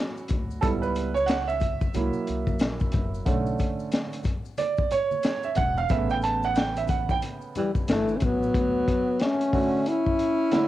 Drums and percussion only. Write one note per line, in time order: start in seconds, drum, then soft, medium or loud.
0.17 maracas soft
0.28 kick loud
0.28 closed hi-hat medium
0.28 low conga medium
0.28 maracas soft
0.51 maracas soft
0.62 kick loud
0.62 closed hi-hat medium
0.62 maracas medium
0.83 maracas soft
0.95 closed hi-hat medium
0.95 maracas soft
1.16 maracas soft
1.28 snare loud
1.28 closed hi-hat medium
1.28 maracas medium
1.49 maracas medium
1.60 kick medium
1.60 closed hi-hat medium
1.60 low conga medium
1.60 maracas soft
1.81 kick medium
1.81 maracas medium
1.94 closed hi-hat medium
1.94 high conga soft
1.94 maracas medium
2.13 maracas soft
2.27 closed hi-hat medium
2.27 maracas soft
2.47 kick medium
2.47 high conga medium
2.47 maracas soft
2.59 snare loud
2.59 closed hi-hat medium
2.59 maracas medium
2.80 kick medium
2.80 maracas soft
2.92 kick loud
2.92 closed hi-hat medium
2.92 low conga medium
2.92 maracas soft
3.14 maracas soft
3.26 kick loud
3.26 closed hi-hat medium
3.26 maracas medium
3.46 maracas soft
3.58 kick medium
3.58 closed hi-hat medium
3.58 maracas soft
3.79 maracas medium
3.92 snare loud
3.92 closed hi-hat medium
3.92 maracas medium
4.12 closed hi-hat medium
4.12 maracas soft
4.23 kick medium
4.23 closed hi-hat medium
4.23 low conga medium
4.23 maracas soft
4.45 maracas soft
4.58 closed hi-hat medium
4.58 high conga soft
4.58 maracas medium
4.77 kick medium
4.77 maracas soft
4.91 closed hi-hat medium
4.91 maracas medium
5.11 high conga medium
5.11 maracas soft
5.23 snare loud
5.23 closed hi-hat medium
5.23 maracas medium
5.43 maracas soft
5.55 kick loud
5.55 closed hi-hat medium
5.55 low conga medium
5.55 maracas soft
5.77 maracas soft
5.89 kick loud
5.89 closed hi-hat medium
5.89 maracas medium
6.10 maracas soft
6.21 closed hi-hat medium
6.21 maracas soft
6.43 maracas soft
6.55 snare loud
6.55 closed hi-hat medium
6.55 maracas medium
6.76 closed hi-hat medium
6.76 maracas soft
6.88 kick medium
6.88 closed hi-hat medium
6.88 low conga medium
6.88 maracas soft
7.09 kick medium
7.09 maracas soft
7.22 closed hi-hat medium
7.22 high conga soft
7.22 maracas medium
7.41 maracas soft
7.55 closed hi-hat medium
7.55 low conga medium
7.55 maracas medium
7.75 kick medium
7.75 high conga medium
7.75 maracas soft
7.88 snare loud
7.88 closed hi-hat medium
7.88 maracas medium
8.08 maracas soft
8.20 kick loud
8.20 closed hi-hat medium
8.20 low conga medium
8.20 maracas soft
8.43 maracas soft
8.54 kick loud
8.54 closed hi-hat medium
8.88 kick medium
8.88 closed hi-hat medium
9.20 snare loud
9.20 closed hi-hat medium
9.41 closed hi-hat medium
9.53 kick medium
9.53 open hi-hat soft
9.86 closed hi-hat medium
10.06 kick medium
10.19 closed hi-hat medium
10.51 snare loud
10.51 closed hi-hat medium